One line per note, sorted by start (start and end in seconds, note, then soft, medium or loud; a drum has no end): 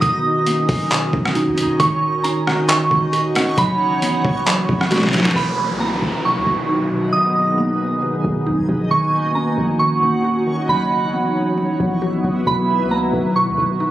0.00 0.66 B1 loud
0.00 0.90 B2 medium
0.00 3.54 D#3 medium
0.00 1.78 C#4 medium
0.00 0.91 D#4 loud
0.00 3.54 D#4 medium
0.00 5.32 F#4 medium
0.00 1.78 C#5 medium
0.00 1.75 D#6 loud
0.00 1.76 A#6 medium
0.00 kick loud
0.00 closed hi-hat medium
0.47 1.80 A#3 medium
0.47 closed hi-hat medium
0.69 1.12 B1 loud
0.69 kick loud
0.69 open hi-hat medium
0.91 1.13 B2 medium
0.91 clap loud
0.91 closed hi-hat medium
1.13 1.48 B1 loud
1.13 1.57 B2 medium
1.13 kick loud
1.25 cross-stick loud
1.35 1.80 D#4 medium
1.35 closed hi-hat medium
1.46 1.65 F#2 loud
1.58 1.80 B2 medium
1.58 closed hi-hat medium
1.63 1.79 B1 loud
1.79 2.87 D#1 loud
1.79 2.68 D#3 medium
1.79 5.32 C#4 medium
1.79 3.56 C#5 medium
1.79 5.32 F#5 medium
1.79 2.22 C#6 loud
1.79 kick loud
1.79 closed hi-hat medium
2.24 3.58 C#4 medium
2.24 2.66 A#5 medium
2.24 closed hi-hat medium
2.47 cross-stick medium
2.68 2.90 D#3 medium
2.68 3.10 C#6 medium
2.68 clap loud
2.68 closed hi-hat medium
2.91 3.55 D#1 loud
2.91 3.34 D#3 medium
2.91 kick medium
3.13 3.58 F#4 loud
3.13 closed hi-hat medium
3.35 3.58 D#3 medium
3.35 cross-stick loud
3.35 closed hi-hat medium
3.58 4.22 F#1 loud
3.58 5.34 E3 medium
3.58 4.45 F#3 medium
3.58 5.34 B3 medium
3.58 5.34 E4 medium
3.58 5.34 B4 medium
3.58 4.87 B5 loud
3.58 kick loud
3.58 closed hi-hat medium
4.02 5.36 B3 medium
4.02 closed hi-hat medium
4.25 4.67 F#1 loud
4.25 kick loud
4.46 4.68 F#3 medium
4.46 clap loud
4.46 closed hi-hat medium
4.69 5.33 A#1 loud
4.69 5.12 F#3 medium
4.69 kick medium
4.81 cross-stick medium
4.91 5.35 F#4 medium
4.91 snare medium
4.91 closed hi-hat medium
4.98 snare medium
5.03 snare medium
5.09 snare medium
5.13 5.36 F#3 medium
5.13 snare medium
5.13 closed hi-hat medium
5.20 snare medium
5.25 snare loud
5.31 snare loud
5.35 5.70 B1 loud
5.35 6.23 B2 medium
5.35 8.88 B2 medium
5.35 10.65 D#3 medium
5.35 8.88 F#3 medium
5.35 8.88 B3 medium
5.35 10.65 D#4 medium
5.35 7.12 F#4 medium
5.35 5.78 B5 medium
5.35 7.12 A#6 medium
5.35 downlifter medium
5.69 6.00 C#2 medium
5.80 7.13 A#3 medium
5.80 6.22 A#5 medium
6.02 6.37 B1 loud
6.25 6.46 B2 medium
6.25 6.67 C#6 medium
6.35 6.46 D#2 medium
6.47 8.20 B1 loud
6.47 6.90 B2 medium
6.69 8.02 D#4 medium
6.92 7.12 B2 medium
7.13 8.01 B2 medium
7.13 8.89 G#4 medium
7.13 8.89 G#5 medium
7.13 8.87 D#6 medium
7.58 8.91 A#3 medium
8.02 8.24 B2 medium
8.24 8.48 B1 loud
8.24 8.68 B2 medium
8.47 8.59 F#2 medium
8.47 8.91 D#4 medium
8.58 8.68 B1 loud
8.69 8.90 A#1 loud
8.69 8.91 B2 medium
8.91 9.55 D#1 loud
8.91 9.79 D#3 medium
8.91 10.67 A#3 medium
8.91 12.43 C#4 medium
8.91 13.91 F#4 medium
8.91 10.67 C#5 medium
8.91 12.43 F#5 medium
8.91 9.33 C#6 loud
9.35 10.69 C#4 medium
9.35 9.77 A#5 medium
9.58 10.00 A#1 loud
9.79 10.02 D#3 medium
9.79 10.21 C#6 medium
10.02 10.66 D#1 loud
10.02 10.45 D#3 medium
10.24 10.69 F#4 medium
10.46 10.69 D#3 medium
10.69 11.76 F#1 loud
10.69 12.45 E3 medium
10.69 13.91 F#3 medium
10.69 11.56 F#3 medium
10.69 13.91 B3 medium
10.69 12.45 E4 medium
10.69 11.98 B5 loud
11.14 12.47 B3 medium
11.58 11.79 F#3 medium
11.80 12.23 A#1 loud
11.80 12.23 F#3 medium
12.02 12.46 F#4 medium
12.24 12.46 F#1 loud
12.24 12.47 F#3 medium
12.47 12.81 B1 loud
12.47 13.34 B2 medium
12.47 13.91 D#3 medium
12.47 13.91 D#4 medium
12.47 12.89 B5 loud
12.47 13.91 A#6 medium
12.80 13.12 C#2 loud
12.91 13.91 A#3 medium
12.91 13.33 A#5 medium
13.13 13.48 B1 loud
13.36 13.57 B2 medium
13.36 13.77 C#6 medium
13.47 13.57 D#2 medium
13.58 13.91 B1 loud
13.58 13.91 B2 medium
13.80 13.91 D#4 medium